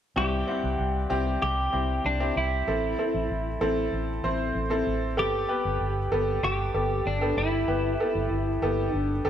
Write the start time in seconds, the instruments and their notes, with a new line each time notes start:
0.16 fingered electric bass C2, upright piano G2 C4 E4 G4, clean electric guitar G4
0.47 upright piano C4 E4 F#5
0.64 fingered electric bass C2
0.79 fingered electric bass C2
1.10 fingered electric bass C2, upright piano C4 E4 G4
1.42 fingered electric bass C2, clean electric guitar G4
1.73 fingered electric bass C2, upright piano C4 E4 G4
2.05 fingered electric bass C2, clean electric guitar D4
2.20 upright piano C4 E4 G4
2.36 fingered electric bass C2, clean electric guitar E4
2.67 fingered electric bass A1, upright piano C4 E4 A4
2.98 upright piano C4 E4 A4
3.14 fingered electric bass A1
3.30 fingered electric bass A1
3.61 fingered electric bass A1, upright piano C4 E4 A4
3.92 fingered electric bass A1
4.24 fingered electric bass A1, upright piano C4 E4 C5
4.55 fingered electric bass A1
4.70 upright piano C4 E4 A4
4.87 fingered electric bass A1
5.17 fingered electric bass G1, upright piano B3 G4 A4, clean electric guitar G4
5.49 upright piano B3 G4 B4
5.65 fingered electric bass G1
5.81 fingered electric bass G1
6.12 fingered electric bass G1, upright piano B3 G4 A4
6.43 fingered electric bass G1, clean electric guitar G4
6.74 fingered electric bass G1, upright piano B3 G4 A4
7.05 fingered electric bass G1, clean electric guitar D4
7.21 upright piano B3 G4 A4
7.37 fingered electric bass G1, clean electric guitar E4
7.68 fingered electric bass G1, upright piano B3 G4 B4
8.00 upright piano B3 G4 A4
8.15 fingered electric bass G1
8.31 fingered electric bass G1
8.62 fingered electric bass G1, upright piano B3 G4 A4
8.93 fingered electric bass G1, clean electric guitar D4
9.25 fingered electric bass G1, upright piano B3 G4 A4